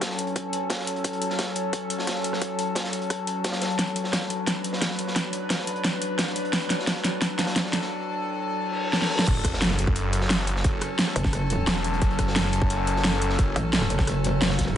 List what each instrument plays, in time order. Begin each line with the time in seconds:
Already playing: synth drone F#3 C#4 A4
0.01 kick, snare, closed hi-hat
0.10 snare
0.18 closed hi-hat
0.27 closed hi-hat
0.36 kick, closed hi-hat
0.53 closed hi-hat
0.70 kick, snare, closed hi-hat
0.80 snare
0.87 closed hi-hat
0.96 closed hi-hat
1.04 kick, closed hi-hat
1.13 closed hi-hat
1.22 closed hi-hat
1.30 snare
1.39 kick, snare, closed hi-hat
1.46 snare
1.55 closed hi-hat
1.73 kick, closed hi-hat
1.90 closed hi-hat
1.99 snare
2.07 kick, snare, closed hi-hat
2.16 snare
2.24 closed hi-hat
2.33 cross-stick, snare
2.42 kick, closed hi-hat
2.59 closed hi-hat
2.75 kick, snare, closed hi-hat
2.84 snare
2.93 closed hi-hat
3.02 closed hi-hat
3.10 kick, cross-stick, closed hi-hat
3.27 closed hi-hat
3.44 kick, snare, closed hi-hat
3.52 snare, closed hi-hat
3.62 snare, closed hi-hat
3.71 closed hi-hat
3.78 synth drone D4 B4, kick, snare, closed hi-hat
3.87 closed hi-hat
3.96 closed hi-hat
4.04 snare
4.13 kick, snare, closed hi-hat
4.21 snare
4.30 closed hi-hat
4.46 kick, snare, closed hi-hat
4.64 closed hi-hat
4.73 snare
4.81 kick, snare, closed hi-hat
4.90 snare
4.99 closed hi-hat
5.08 snare
5.16 kick, snare, closed hi-hat
5.33 closed hi-hat
5.50 kick, snare, closed hi-hat
5.59 snare
5.67 closed hi-hat
5.76 closed hi-hat
5.84 kick, snare, closed hi-hat
6.02 closed hi-hat
6.18 kick, snare, closed hi-hat
6.27 snare
6.36 closed hi-hat
6.45 closed hi-hat
6.53 synth drone A4, kick, snare, closed hi-hat
6.62 closed hi-hat
6.69 snare, closed hi-hat
6.79 snare
6.87 kick, snare, closed hi-hat
6.96 snare
7.04 snare, closed hi-hat
7.22 kick, snare, closed hi-hat
7.38 snare, closed hi-hat
7.47 snare, closed hi-hat
7.56 kick, snare, closed hi-hat
7.65 snare
7.73 snare, closed hi-hat
7.81 snare
8.59 reverse cymbal
8.93 snare
9.02 snare
9.19 snare
9.27 detuned saw bass F#1, synth drone F#3 C#4 A4, kick, closed hi-hat, crash, sub drop
9.36 closed hi-hat
9.43 kick, cross-stick, closed hi-hat
9.54 snare
9.62 snare, closed hi-hat
9.70 cross-stick, snare
9.79 detuned saw bass F#1, closed hi-hat
9.87 kick
9.95 closed hi-hat
10.13 closed hi-hat
10.21 snare
10.29 snare, closed hi-hat
10.40 snare
10.47 closed hi-hat
10.56 snare
10.64 detuned saw bass F#1, kick, closed hi-hat
10.81 cross-stick, closed hi-hat
10.99 snare, closed hi-hat
11.07 cross-stick, snare
11.16 wobble bass F#1, closed hi-hat
11.24 kick, snare, closed hi-hat
11.33 cross-stick, closed hi-hat
11.50 closed hi-hat
11.67 detuned saw bass E1, snare, closed hi-hat
11.76 cross-stick, snare
11.84 closed hi-hat
11.93 closed hi-hat
12.02 detuned saw bass F#1, kick, closed hi-hat
12.11 closed hi-hat
12.18 kick, cross-stick, closed hi-hat
12.27 snare
12.36 snare, closed hi-hat
12.44 cross-stick, snare
12.53 detuned saw bass F#1, closed hi-hat
12.62 kick
12.70 closed hi-hat
12.87 closed hi-hat
12.96 snare
13.04 snare, closed hi-hat
13.13 snare
13.22 closed hi-hat
13.29 snare
13.38 detuned saw bass F#1, kick, closed hi-hat
13.56 wobble bass A1, cross-stick, closed hi-hat
13.73 snare, closed hi-hat
13.81 cross-stick, snare
13.89 wobble bass F#1, closed hi-hat
13.99 kick, snare, closed hi-hat
14.07 cross-stick, closed hi-hat
14.24 closed hi-hat
14.41 wobble bass F#1, snare, closed hi-hat
14.50 cross-stick, snare, closed hi-hat
14.58 kick, snare, closed hi-hat
14.68 closed hi-hat